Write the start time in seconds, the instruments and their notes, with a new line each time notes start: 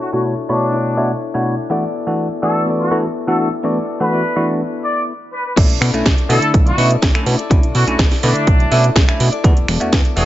Already playing: clean electric guitar D4 E4 A4 C#5
0.01 trumpet section F#4
0.13 tine electric piano B2 A3 D4 E4 F#4 C#5, trumpet section F#4
0.24 clean electric guitar D4 E4 A4 C#5
0.49 tine electric piano B2 A3 D4 E4 F#4 C#5, trumpet section D4
0.72 clean electric guitar D4 E4 A4
0.77 clean electric guitar C#5
0.97 tine electric piano B2 A3 D4 E4 F#4 C#5
1.34 tine electric piano B2 A3 D4 E4 F#4 C#5
1.70 tine electric piano E3 A3 B3 D4 F#4, clean electric guitar B3 E4 A4 D5
2.06 tine electric piano E3 A3 B3 D4 F#4
2.42 tine electric piano E3 A3 B3 D4 F#4, clean electric guitar E4 A4 D5, trumpet section A4
2.66 clean electric guitar B3 E4 A4
2.70 clean electric guitar D5
2.79 trumpet section F#4
2.91 tine electric piano E3 A3 B3 D4 F#4
3.27 tine electric piano E3 A3 B3 D4 F#4, trumpet section A4
3.39 trumpet section A4
3.63 tine electric piano E3 A3 B3 D4 F#4, clean electric guitar B3 E4 A4 D5
4.00 tine electric piano E3 A3 B3 D4 F#4, trumpet section B4
4.11 clean electric guitar B3 E4 A4 D5
4.36 tine electric piano E3 A3 B3 D4 F#4
4.84 trumpet section D5
5.33 trumpet section B4
5.45 trumpet section B4
5.56 analog synth bass B1, tine electric piano A3 C#4 D4 E4, clean electric guitar C#4 E4 A4 D5, kick, closed hi-hat, crash
5.70 analog synth bass B2, closed hi-hat
5.80 analog synth bass B2, clean electric guitar C#4 E4 A4 D5, finger snap, open hi-hat
5.94 analog synth bass B1, tine electric piano A3 C#4 D4 E4, closed hi-hat
6.05 analog synth bass B1, clean electric guitar C#4 E4 A4 D5, kick, snare, closed hi-hat
6.18 closed hi-hat
6.29 analog synth bass B2, tine electric piano D3 A3 E4, clean electric guitar C#4 E4 A4 D5, trumpet section A4, open hi-hat
6.41 clean electric guitar E4 A4 D5, closed hi-hat
6.54 analog synth bass B1, kick, closed hi-hat
6.66 clean electric guitar E4 A4 D5, trumpet section F#4, closed hi-hat
6.77 analog synth bass B2, tine electric piano A3 C#4 D4 E4, clean electric guitar C#4 E4 A4 D5, open hi-hat
6.91 closed hi-hat
7.02 analog synth bass B1, clean electric guitar A4 D5, kick, snare, closed hi-hat
7.14 tine electric piano A3 C#4 D4 E4, clean electric guitar E4 A4, finger snap, closed hi-hat
7.26 analog synth bass B2, open hi-hat
7.38 clean electric guitar E4 A4 D5, closed hi-hat
7.50 analog synth bass B1, tine electric piano A3 C#4 D4 E4, clean electric guitar C#4 E4 A4 D5, kick, closed hi-hat
7.63 analog synth bass B2, closed hi-hat
7.74 analog synth bass B2, clean electric guitar C#4 E4 A4 D5, trumpet section F#4, open hi-hat
7.87 analog synth bass B1, tine electric piano A3 C#4 D4 E4, trumpet section F#4, closed hi-hat
7.98 analog synth bass B1, clean electric guitar C#4 D5, kick, snare, closed hi-hat
8.11 snare, open hi-hat
8.22 analog synth bass B2, tine electric piano D3 A3 E4, clean electric guitar C#4 E4 A4 D5, trumpet section D4, open hi-hat
8.35 clean electric guitar E4 A4 D5, closed hi-hat
8.47 analog synth bass B1, kick, closed hi-hat
8.59 clean electric guitar E4 A4 D5, closed hi-hat
8.71 analog synth bass B2, tine electric piano A3 C#4 D4 E4, clean electric guitar C#4 E4 A4 D5, open hi-hat
8.84 closed hi-hat
8.95 analog synth bass B1, clean electric guitar C#4 E4 D5, kick, snare, closed hi-hat
9.08 tine electric piano A3 C#4 D4 E4, clean electric guitar E4 A4 D5, finger snap, closed hi-hat
9.20 analog synth bass B2, open hi-hat
9.32 clean electric guitar E4 A4 D5, closed hi-hat
9.44 analog synth bass E2, tine electric piano A3 B3 D4 F#4, clean electric guitar B3 E4 A4 D5, kick, closed hi-hat
9.57 analog synth bass E1, closed hi-hat
9.68 analog synth bass E1, clean electric guitar B3 E4 A4 D5, finger snap, open hi-hat
9.80 analog synth bass E2, tine electric piano A3 B3 D4 F#4, closed hi-hat
9.92 analog synth bass E2, clean electric guitar E4 A4 D5, kick, snare, closed hi-hat
10.05 closed hi-hat
10.16 analog synth bass E1, tine electric piano A3 B3 D4 F#4, clean electric guitar B3 E4 A4 D5, trumpet section A4, open hi-hat